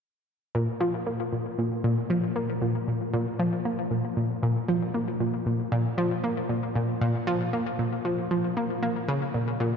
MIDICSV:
0, 0, Header, 1, 2, 480
1, 0, Start_track
1, 0, Tempo, 517241
1, 509, Time_signature, 4, 2, 24, 8
1, 9064, End_track
2, 0, Start_track
2, 0, Title_t, "Synth arpeggio sound"
2, 0, Program_c, 0, 84
2, 509, Note_on_c, 0, 46, 95
2, 615, Note_off_c, 0, 46, 0
2, 747, Note_on_c, 0, 53, 96
2, 854, Note_off_c, 0, 53, 0
2, 988, Note_on_c, 0, 58, 69
2, 1094, Note_off_c, 0, 58, 0
2, 1229, Note_on_c, 0, 46, 66
2, 1457, Note_off_c, 0, 46, 0
2, 1470, Note_on_c, 0, 46, 73
2, 1697, Note_off_c, 0, 46, 0
2, 1708, Note_on_c, 0, 46, 92
2, 1814, Note_off_c, 0, 46, 0
2, 1948, Note_on_c, 0, 53, 93
2, 2054, Note_off_c, 0, 53, 0
2, 2187, Note_on_c, 0, 58, 73
2, 2294, Note_off_c, 0, 58, 0
2, 2428, Note_on_c, 0, 46, 75
2, 2657, Note_off_c, 0, 46, 0
2, 2670, Note_on_c, 0, 46, 71
2, 2897, Note_off_c, 0, 46, 0
2, 2909, Note_on_c, 0, 46, 96
2, 3015, Note_off_c, 0, 46, 0
2, 3148, Note_on_c, 0, 53, 94
2, 3254, Note_off_c, 0, 53, 0
2, 3389, Note_on_c, 0, 58, 73
2, 3495, Note_off_c, 0, 58, 0
2, 3627, Note_on_c, 0, 46, 69
2, 3856, Note_off_c, 0, 46, 0
2, 3867, Note_on_c, 0, 46, 71
2, 4096, Note_off_c, 0, 46, 0
2, 4108, Note_on_c, 0, 46, 91
2, 4214, Note_off_c, 0, 46, 0
2, 4347, Note_on_c, 0, 53, 95
2, 4454, Note_off_c, 0, 53, 0
2, 4588, Note_on_c, 0, 58, 71
2, 4694, Note_off_c, 0, 58, 0
2, 4829, Note_on_c, 0, 46, 72
2, 5057, Note_off_c, 0, 46, 0
2, 5068, Note_on_c, 0, 46, 68
2, 5296, Note_off_c, 0, 46, 0
2, 5307, Note_on_c, 0, 46, 93
2, 5414, Note_off_c, 0, 46, 0
2, 5546, Note_on_c, 0, 53, 88
2, 5654, Note_off_c, 0, 53, 0
2, 5788, Note_on_c, 0, 58, 72
2, 5894, Note_off_c, 0, 58, 0
2, 6026, Note_on_c, 0, 46, 66
2, 6256, Note_off_c, 0, 46, 0
2, 6269, Note_on_c, 0, 46, 79
2, 6497, Note_off_c, 0, 46, 0
2, 6507, Note_on_c, 0, 46, 97
2, 6614, Note_off_c, 0, 46, 0
2, 6748, Note_on_c, 0, 53, 97
2, 6854, Note_off_c, 0, 53, 0
2, 6989, Note_on_c, 0, 58, 70
2, 7095, Note_off_c, 0, 58, 0
2, 7228, Note_on_c, 0, 46, 71
2, 7457, Note_off_c, 0, 46, 0
2, 7469, Note_on_c, 0, 53, 71
2, 7646, Note_off_c, 0, 53, 0
2, 7710, Note_on_c, 0, 53, 71
2, 7886, Note_off_c, 0, 53, 0
2, 7951, Note_on_c, 0, 58, 70
2, 8127, Note_off_c, 0, 58, 0
2, 8190, Note_on_c, 0, 58, 79
2, 8295, Note_off_c, 0, 58, 0
2, 8429, Note_on_c, 0, 49, 98
2, 8535, Note_off_c, 0, 49, 0
2, 8671, Note_on_c, 0, 46, 69
2, 8898, Note_off_c, 0, 46, 0
2, 8910, Note_on_c, 0, 46, 92
2, 9015, Note_off_c, 0, 46, 0
2, 9064, End_track
0, 0, End_of_file